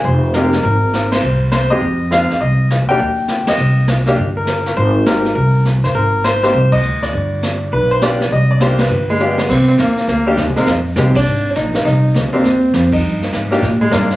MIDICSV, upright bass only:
0, 0, Header, 1, 3, 480
1, 0, Start_track
1, 0, Key_signature, -3, "minor"
1, 0, Tempo, 295276
1, 70, Time_signature, 4, 2, 24, 8
1, 23020, End_track
2, 0, Start_track
2, 0, Title_t, "Upright bass"
2, 0, Program_c, 0, 32
2, 66, Note_on_c, 0, 29, 76
2, 981, Note_off_c, 0, 29, 0
2, 1028, Note_on_c, 0, 32, 81
2, 1942, Note_off_c, 0, 32, 0
2, 1984, Note_on_c, 0, 36, 82
2, 2714, Note_off_c, 0, 36, 0
2, 2777, Note_on_c, 0, 42, 66
2, 2937, Note_off_c, 0, 42, 0
2, 2947, Note_on_c, 0, 41, 83
2, 3675, Note_off_c, 0, 41, 0
2, 3914, Note_on_c, 0, 36, 79
2, 4509, Note_off_c, 0, 36, 0
2, 4550, Note_on_c, 0, 39, 59
2, 4700, Note_off_c, 0, 39, 0
2, 4708, Note_on_c, 0, 35, 64
2, 4859, Note_off_c, 0, 35, 0
2, 4867, Note_on_c, 0, 39, 85
2, 5595, Note_off_c, 0, 39, 0
2, 5822, Note_on_c, 0, 36, 82
2, 6739, Note_off_c, 0, 36, 0
2, 6778, Note_on_c, 0, 31, 78
2, 7698, Note_off_c, 0, 31, 0
2, 7747, Note_on_c, 0, 32, 83
2, 8662, Note_off_c, 0, 32, 0
2, 8702, Note_on_c, 0, 36, 84
2, 9433, Note_off_c, 0, 36, 0
2, 9478, Note_on_c, 0, 31, 63
2, 9652, Note_off_c, 0, 31, 0
2, 9664, Note_on_c, 0, 32, 79
2, 10581, Note_off_c, 0, 32, 0
2, 10623, Note_on_c, 0, 36, 86
2, 11074, Note_off_c, 0, 36, 0
2, 11094, Note_on_c, 0, 38, 71
2, 11550, Note_off_c, 0, 38, 0
2, 11589, Note_on_c, 0, 31, 79
2, 12503, Note_off_c, 0, 31, 0
2, 12548, Note_on_c, 0, 35, 79
2, 13463, Note_off_c, 0, 35, 0
2, 13503, Note_on_c, 0, 36, 84
2, 14420, Note_off_c, 0, 36, 0
2, 14451, Note_on_c, 0, 31, 80
2, 15373, Note_off_c, 0, 31, 0
2, 15422, Note_on_c, 0, 36, 77
2, 15893, Note_off_c, 0, 36, 0
2, 15900, Note_on_c, 0, 39, 84
2, 16365, Note_off_c, 0, 39, 0
2, 16375, Note_on_c, 0, 38, 76
2, 16849, Note_off_c, 0, 38, 0
2, 16859, Note_on_c, 0, 39, 85
2, 17012, Note_off_c, 0, 39, 0
2, 17012, Note_on_c, 0, 36, 54
2, 17168, Note_off_c, 0, 36, 0
2, 17337, Note_on_c, 0, 41, 82
2, 17805, Note_off_c, 0, 41, 0
2, 17814, Note_on_c, 0, 36, 91
2, 18282, Note_off_c, 0, 36, 0
2, 18292, Note_on_c, 0, 32, 82
2, 18766, Note_off_c, 0, 32, 0
2, 18787, Note_on_c, 0, 34, 85
2, 19254, Note_off_c, 0, 34, 0
2, 19265, Note_on_c, 0, 36, 83
2, 19732, Note_off_c, 0, 36, 0
2, 19740, Note_on_c, 0, 38, 81
2, 20019, Note_off_c, 0, 38, 0
2, 20224, Note_on_c, 0, 39, 80
2, 20692, Note_off_c, 0, 39, 0
2, 20702, Note_on_c, 0, 41, 84
2, 21160, Note_off_c, 0, 41, 0
2, 21170, Note_on_c, 0, 43, 79
2, 21644, Note_off_c, 0, 43, 0
2, 21660, Note_on_c, 0, 44, 78
2, 22129, Note_off_c, 0, 44, 0
2, 22140, Note_on_c, 0, 46, 84
2, 22608, Note_off_c, 0, 46, 0
2, 22617, Note_on_c, 0, 43, 88
2, 23020, Note_off_c, 0, 43, 0
2, 23020, End_track
3, 0, Start_track
3, 0, Title_t, "Muted upright bass strokes"
3, 3735, Note_on_c, 9, 29, 36
3, 3898, Note_off_c, 9, 29, 0
3, 5637, Note_on_c, 9, 29, 36
3, 5800, Note_off_c, 9, 29, 0
3, 20029, Note_on_c, 9, 29, 41
3, 20192, Note_off_c, 9, 29, 0
3, 23020, End_track
0, 0, End_of_file